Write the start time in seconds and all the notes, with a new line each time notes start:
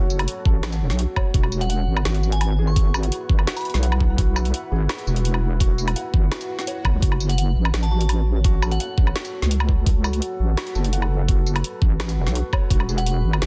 Already playing: F#1 F#4 A4 C#5 F#5
0.10 tambourine
0.19 closed hi-hat, low woodblock
0.28 closed hi-hat
0.45 A1 A4, kick
0.63 snare, closed hi-hat, low woodblock
0.72 closed hi-hat, tambourine
0.81 E1
0.90 B1, snare, closed hi-hat
0.99 F#4, closed hi-hat
1.16 C#5, kick, low woodblock
1.34 E1 E4 F#4 B4 F#5, kick, closed hi-hat
1.43 low woodblock
1.52 tambourine
1.61 F#5, closed hi-hat
1.69 F#5, closed hi-hat
1.87 G#1
1.97 low woodblock
2.05 G#1 F#4, snare, closed hi-hat
2.14 closed hi-hat
2.23 tambourine
2.32 G#5, closed hi-hat
2.41 G#5, closed hi-hat, low woodblock
2.59 G#4
2.67 C#6
2.76 kick, closed hi-hat
2.94 F#4, tambourine, low woodblock
3.03 closed hi-hat
3.12 closed hi-hat
3.29 G#1, kick
3.39 low woodblock
3.47 F#4, snare, closed hi-hat
3.57 B5, closed hi-hat, tambourine
3.61 closed hi-hat
3.65 closed hi-hat
3.70 closed hi-hat
3.74 B1, snare, closed hi-hat
3.83 F#5, closed hi-hat
3.92 low woodblock
4.01 kick
4.18 F#4, kick, closed hi-hat
4.36 tambourine, low woodblock
4.45 closed hi-hat
4.54 closed hi-hat
4.72 G#1 G#4
4.89 snare, closed hi-hat, low woodblock
4.98 closed hi-hat
5.07 E1 F#4, tambourine
5.16 closed hi-hat
5.25 closed hi-hat
5.34 low woodblock
5.60 F#4, kick, closed hi-hat
5.78 tambourine
5.88 closed hi-hat, low woodblock
5.96 F#5, closed hi-hat
6.14 G#1, kick
6.31 F#4, snare, closed hi-hat, swell, low woodblock
6.41 closed hi-hat, tambourine
6.59 snare, closed hi-hat
6.67 C#5, closed hi-hat
6.85 G#1, kick, low woodblock
6.94 C#2
7.02 F#1 F#4 A4 C#5, kick, closed hi-hat
7.12 low woodblock
7.20 tambourine
7.29 F#5, closed hi-hat
7.38 F#5, closed hi-hat
7.56 A1
7.65 low woodblock
7.73 A1, snare, closed hi-hat
7.83 A5, closed hi-hat
7.91 F#4 A5
8.01 closed hi-hat
8.09 closed hi-hat, low woodblock
8.44 F#4, kick, closed hi-hat
8.62 A4, tambourine, low woodblock
8.71 F#5, closed hi-hat
8.80 F#5, closed hi-hat
8.98 A1, kick
9.07 low woodblock
9.16 F#4, snare, closed hi-hat
9.25 closed hi-hat, tambourine
9.42 C#2, snare, closed hi-hat
9.51 closed hi-hat
9.60 low woodblock
9.69 kick
9.86 B4, kick, closed hi-hat
10.04 F#4, tambourine, low woodblock
10.13 closed hi-hat
10.22 closed hi-hat
10.40 A1
10.57 F#4, snare, closed hi-hat, low woodblock
10.67 closed hi-hat
10.75 F#1 A4, tambourine
10.84 closed hi-hat
10.93 F#5, closed hi-hat
11.02 low woodblock
11.28 F#4, kick, closed hi-hat
11.46 tambourine
11.56 closed hi-hat, low woodblock
11.64 closed hi-hat
11.82 A1, kick
12.00 snare, closed hi-hat, low woodblock
12.09 closed hi-hat, tambourine
12.17 E1
12.26 B1, snare, closed hi-hat
12.35 F#4, closed hi-hat
12.53 C#5, kick, low woodblock
12.71 E1 E4 F#4 F#5, kick, closed hi-hat
12.80 low woodblock
12.89 G#4, tambourine
12.98 F#5, closed hi-hat
13.06 F#4 F#5, closed hi-hat
13.24 G#1
13.33 low woodblock
13.42 G#1 F#4, snare, closed hi-hat